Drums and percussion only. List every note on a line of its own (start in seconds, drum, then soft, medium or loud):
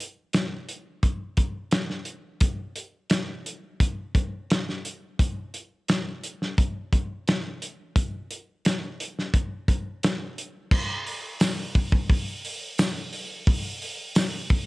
0.00 closed hi-hat medium
0.33 snare loud
0.33 closed hi-hat medium
0.69 closed hi-hat medium
1.03 kick medium
1.03 closed hi-hat medium
1.37 kick medium
1.37 closed hi-hat medium
1.71 snare loud
1.71 closed hi-hat medium
1.90 snare soft
2.05 closed hi-hat medium
2.40 kick loud
2.40 closed hi-hat medium
2.76 closed hi-hat medium
3.10 snare loud
3.10 closed hi-hat loud
3.46 closed hi-hat medium
3.80 kick medium
3.80 closed hi-hat medium
4.15 kick medium
4.15 closed hi-hat medium
4.50 snare loud
4.50 closed hi-hat medium
4.69 snare soft
4.85 closed hi-hat medium
5.19 kick loud
5.19 closed hi-hat medium
5.54 closed hi-hat medium
5.88 snare loud
5.88 closed hi-hat medium
6.23 closed hi-hat medium
6.42 snare soft
6.58 kick loud
6.58 closed hi-hat medium
6.93 kick medium
6.93 closed hi-hat medium
7.28 snare loud
7.28 closed hi-hat medium
7.62 closed hi-hat medium
7.96 kick loud
7.96 closed hi-hat medium
8.31 closed hi-hat medium
8.65 snare medium
8.65 closed hi-hat loud
9.00 closed hi-hat medium
9.19 snare soft
9.34 kick medium
9.34 closed hi-hat medium
9.68 kick medium
9.68 closed hi-hat medium
10.03 snare loud
10.03 closed hi-hat medium
10.38 closed hi-hat medium
10.71 kick loud
10.71 crash loud
11.07 open hi-hat medium
11.40 snare loud
11.40 open hi-hat medium
11.40 tambourine medium
11.75 kick medium
11.75 open hi-hat medium
11.92 kick medium
12.10 kick loud
12.10 open hi-hat medium
12.45 open hi-hat medium
12.78 snare loud
12.78 open hi-hat medium
12.78 tambourine loud
13.13 open hi-hat medium
13.47 kick loud
13.47 open hi-hat medium
13.82 open hi-hat medium
14.15 snare loud
14.15 open hi-hat medium
14.15 tambourine medium
14.50 kick medium
14.50 open hi-hat medium